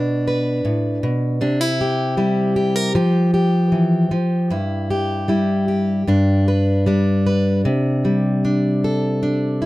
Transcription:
Already playing: B2 D4
0.28 B4
0.65 A2
1.03 B2
1.41 C3 D4
1.61 E4
1.81 G4
2.17 G3 E4
2.56 G4
2.76 A#4
2.95 F3 G4
3.34 G4
3.72 E3
4.11 F3
4.50 G2 E4
4.90 G4
5.28 G3 E4
5.68 G4
6.08 G2 D4
6.48 B4
6.86 G3 D4
7.27 B4
7.65 C3
8.05 G3
8.45 D4
8.84 A4
9.23 D4
9.62 E4

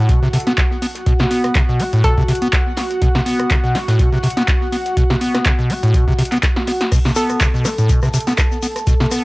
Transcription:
Already playing: A2 F#4 F#5
0.09 B2, kick, closed hi-hat
0.22 C3, snare
0.33 C3, closed hi-hat, open hi-hat
0.40 closed hi-hat
0.47 B3, snare, closed hi-hat
0.58 kick, snare, clap, closed hi-hat
0.71 snare
0.82 B3, closed hi-hat, open hi-hat
0.95 snare, closed hi-hat
1.06 B2, kick, closed hi-hat
1.19 C3, snare, closed hi-hat
1.31 B3, closed hi-hat, open hi-hat
1.44 cross-stick, closed hi-hat
1.55 B2, kick, snare, clap, closed hi-hat
1.69 B2, snare
1.80 B3, closed hi-hat, open hi-hat
1.93 A2, closed hi-hat
2.04 B2 A4, kick, closed hi-hat
2.17 C3, kick
2.28 C3, closed hi-hat, open hi-hat
2.35 closed hi-hat
2.42 B3, closed hi-hat
2.53 kick, snare, clap, closed hi-hat
2.77 B3, snare, closed hi-hat, open hi-hat
2.90 snare, closed hi-hat
3.02 B2, kick, closed hi-hat
3.15 C3, snare
3.26 B3, closed hi-hat, open hi-hat
3.39 cross-stick, closed hi-hat
3.50 B2, kick, snare, clap, closed hi-hat
3.64 B2, snare
3.75 B3, snare, closed hi-hat, open hi-hat
3.88 A2, snare, closed hi-hat
3.99 B2, kick, closed hi-hat
4.12 C3, snare
4.23 C3, closed hi-hat, open hi-hat
4.30 closed hi-hat
4.37 B3, snare, closed hi-hat
4.48 kick, snare, clap, closed hi-hat
4.61 snare
4.72 B3, closed hi-hat, open hi-hat
4.86 snare, closed hi-hat
4.97 B2, kick, closed hi-hat
5.10 C3, snare, closed hi-hat
5.21 B3, closed hi-hat, open hi-hat
5.35 cross-stick, snare, closed hi-hat
5.45 B2, kick, snare, clap, closed hi-hat
5.59 B2, snare
5.70 B3, closed hi-hat, open hi-hat
5.83 A2, snare, closed hi-hat
5.94 B2, kick, closed hi-hat
6.08 C3, kick
6.19 C3, closed hi-hat, open hi-hat
6.25 closed hi-hat
6.32 B3, snare, clap, closed hi-hat
6.43 kick, snare, clap, closed hi-hat
6.56 snare
6.67 B3, snare, closed hi-hat, open hi-hat
6.81 snare, closed hi-hat
6.92 B2 A4 A5, kick, cross-stick, closed hi-hat, crash, shaker
7.05 C3, snare, shaker
7.15 B3 A4, closed hi-hat, open hi-hat, shaker
7.30 cross-stick, closed hi-hat, shaker
7.40 B2, kick, snare, clap, closed hi-hat, shaker
7.54 B2, snare, shaker
7.65 B3, cross-stick, snare, closed hi-hat, open hi-hat, shaker
7.78 A2, closed hi-hat, shaker
7.89 B2, kick, closed hi-hat, shaker
8.02 C3, cross-stick, snare, shaker
8.14 C3, closed hi-hat, open hi-hat, shaker
8.20 closed hi-hat
8.27 B3, snare, closed hi-hat, shaker
8.37 kick, cross-stick, snare, clap, closed hi-hat, shaker
8.51 snare, shaker
8.62 B3, closed hi-hat, open hi-hat, shaker
8.76 cross-stick, snare, closed hi-hat, shaker
8.87 B2, kick, closed hi-hat, shaker
9.00 C3, snare, closed hi-hat, shaker
9.11 B3, cross-stick, closed hi-hat, open hi-hat, shaker

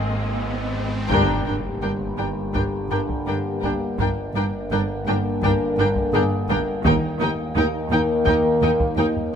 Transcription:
Already playing: G#1 G#2 C4 G#4 D#5, riser
1.09 G1 G2 D3 G3 A#3 D4 G4 A#4 G5, taiko, impact
1.44 G1 G2 D4 A#4 G5
1.82 G1 G2 G3 D4 A#4 G5
2.17 G1 G2 D4 G4 A#4 G5
2.54 G1 G2 G3 D4 A#4 G5, taiko
2.91 G1 G2 D4 A#4 G5
3.09 taiko
3.27 G1 G2 D4 A#4 G5
3.62 G1 G2 D4 A#4 G5, taiko
3.99 G1 G2 D3 A#3 D4 A#4 G5, taiko
4.35 G1 G2 D4 A#4 G5
4.71 G1 G2 G3 D4 A#4 G5
5.07 G1 G2 D4 A#4 G5
5.42 G1 G2 G3 D4 A#4 G5, taiko
5.78 G1 G2 D4 A#4 G5
5.96 taiko
6.13 G1 G2 D4 G#4 A#4 G5
6.49 G1 G2 D4 A#4 G5, taiko
6.84 D#2 D#3 A#3 D#4 A#4 G5, taiko
7.20 D#2 D#3 D#4 A#4 G5
7.55 D#2 D#4 A#4 G5
7.91 D#2 D#3 D#4 A#4 G5
8.26 D#2 D#4 A#4 G5, taiko
8.62 D#2 D#3 D#4 A#4 G5
8.80 taiko
8.97 D#2 D#3 D#4 A#4 G5
9.16 taiko low

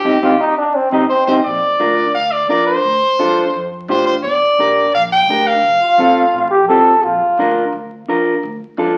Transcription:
Already playing: G4
0.05 C2 C4 D#4 G4
0.22 C2 C4 D#4 F4 G4
0.40 D#4
0.58 D4
0.75 C4
0.92 C2 C4 D#4 G4
1.09 C4 C5
1.27 C2 C4 D#4 G4 C5
1.44 A#1 D5
1.80 D2 D4 F4 A#4
2.15 D2 F5
2.32 D5
2.49 F2 D4 F4 A#4 D5
2.67 C5
2.84 D2
3.19 F2 D4 F4 A4
3.54 F2
3.88 A1 D4 F4 G4 C5
4.07 C5
4.23 G1 D5
4.58 A#1 D4 G4 A#4
4.93 A#1 F5
5.13 G5
5.28 D2 D4 G4 A#4
5.47 F5
5.63 F1
5.81 F4
5.98 A1 C4 F4 A4
6.34 A1
6.51 G4
6.68 C2 C4 F4 G4 A4
7.03 A#1 F4
7.37 D2 D4 F4 A#4
7.73 D2
8.08 F2 D4 F4 A#4
8.43 D2
8.77 F2 D4 F4 A4

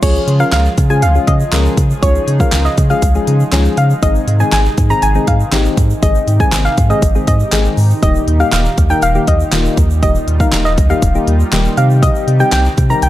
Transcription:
0.02 C#2 C#3 F3 G#3 C#4 F4 G#4 C#5, kick, closed hi-hat, crash, shaker
0.15 shaker
0.28 C#3, closed hi-hat
0.40 F3 G#3 C#4 F4 A#4 F5, shaker
0.52 C#2 F5, snare, clap, closed hi-hat, shaker
0.65 shaker
0.78 C#3, kick, closed hi-hat, shaker
0.90 F3 G#3 C#4 F4 G#4 G#5, shaker
1.02 C#2 F5, closed hi-hat, shaker
1.15 F3 G#3 C#4 F4 G#4, shaker
1.27 C#3 D#5, kick, closed hi-hat
1.40 shaker
1.52 C#2 F3 G#3 C#4 F4 A#4, snare, clap, closed hi-hat, shaker
1.65 shaker
1.77 C#3, kick, closed hi-hat, shaker
1.90 shaker
2.02 C#2 F3 G#3 C#4 D#4 F4 G#4 C#5, kick, closed hi-hat, shaker
2.15 shaker
2.28 C#3, closed hi-hat
2.40 F3 G#3 C#4 F4 A#4 F5, kick, shaker
2.52 C#2, snare, clap, closed hi-hat, shaker
2.65 D#5, shaker
2.78 C#3, kick, closed hi-hat, shaker
2.90 F3 G#3 C#4 F4 G#4 F5, shaker
3.02 C#2, kick, closed hi-hat, shaker
3.15 F3 G#3 C#4 F4 G#4, shaker
3.27 C#3, closed hi-hat
3.40 shaker
3.52 C#2 F3 G#3 C#4 F4 G#4, snare, clap, closed hi-hat, shaker
3.65 shaker
3.77 C#3 F5, closed hi-hat, shaker
3.90 shaker
4.02 G#1 C3 D#3 G#3 C4 D#4 G#4 D#5, kick, closed hi-hat, shaker
4.15 shaker
4.28 G#2, closed hi-hat
4.40 D#3 G#3 C4 D#4 G#4 G#5, shaker
4.52 G#1 G#5, snare, clap, closed hi-hat, shaker
4.65 shaker
4.78 G#2, kick, closed hi-hat, shaker
4.90 D#3 G#3 C4 D#4 G#4 A#5, shaker
5.02 G#1 G#5, closed hi-hat, shaker
5.15 D#3 G#3 C4 D#4 G#4, shaker
5.27 G#2 F5, kick, closed hi-hat
5.40 shaker
5.52 G#1 D#3 G#3 C4 D#4 G4, snare, clap, closed hi-hat, shaker
5.65 shaker
5.77 G#2, kick, closed hi-hat, shaker
5.90 shaker
6.02 G#1 D#3 G#3 C4 D#4 G4 G#4 D#5, kick, closed hi-hat, shaker
6.15 shaker
6.28 G#2, closed hi-hat, shaker
6.40 D#3 G#3 C4 D#4 G#4 G#5, kick, shaker
6.52 G#1, snare, clap, closed hi-hat, shaker
6.65 F5, shaker
6.78 G#2, kick, closed hi-hat, shaker
6.90 D#3 G#3 C4 D#4 G#4 D#5, shaker
7.02 G#1, kick, closed hi-hat, shaker
7.15 D#3 G#3 C4 D#4 G#4, shaker
7.27 G#2 D#5, kick, closed hi-hat, shaker
7.40 shaker
7.52 G#1 D#3 G#3 C4 D#4 G#4, snare, clap, closed hi-hat, shaker
7.65 shaker
7.77 G#2, open hi-hat, shaker
7.90 shaker
8.02 D#1 A#2 D#3 G3 A#3 D#4 G4 D#5, kick, closed hi-hat, shaker
8.15 shaker
8.28 D#2, closed hi-hat
8.40 D#3 G3 A#3 D#4 G4 F5, shaker
8.52 D#1 F5, snare, clap, closed hi-hat, shaker
8.65 shaker
8.78 D#2, kick, closed hi-hat, shaker
8.90 D#3 G3 A#3 D#4 A#4 G5, shaker
9.02 D#1 F5, closed hi-hat, shaker
9.15 D#3 G3 A#3 D#4 G4, shaker
9.27 D#2 D#5, kick, closed hi-hat
9.40 shaker
9.52 D#1 D#3 G3 A#3 D#4 F4, snare, clap, closed hi-hat, shaker
9.65 shaker
9.77 D#2, kick, closed hi-hat, shaker
9.90 shaker
10.02 D#1 D#3 G3 A#3 D#4 F4 G4 D#5, kick, closed hi-hat, shaker
10.15 shaker
10.28 D#2, closed hi-hat
10.40 D#3 G3 A#3 D#4 A#4 F5, kick, shaker
10.52 D#1, snare, clap, closed hi-hat, shaker
10.65 D#5, shaker
10.78 D#2, kick, closed hi-hat, shaker
10.90 D#3 G3 A#3 D#4 G4 F5, shaker
11.02 D#1, kick, closed hi-hat, shaker
11.15 D#3 G3 A#3 D#4 G4, shaker
11.27 D#2, closed hi-hat
11.40 shaker
11.52 D#1 D#3 G3 A#3 D#4 G4, snare, clap, closed hi-hat, shaker
11.65 shaker
11.77 C3 D#3 G3 C4 D#4 G4 F5, closed hi-hat, shaker
11.90 shaker
12.02 D#5, kick, closed hi-hat, shaker
12.15 shaker
12.28 C3, closed hi-hat
12.40 D#3 G3 C4 D#4 G4 G5, shaker
12.52 C2 G5, snare, clap, closed hi-hat, shaker
12.65 shaker
12.78 C3, kick, closed hi-hat, shaker
12.90 D#3 G3 C4 D#4 A#4 A#5, shaker
13.02 C2 G5, closed hi-hat, shaker

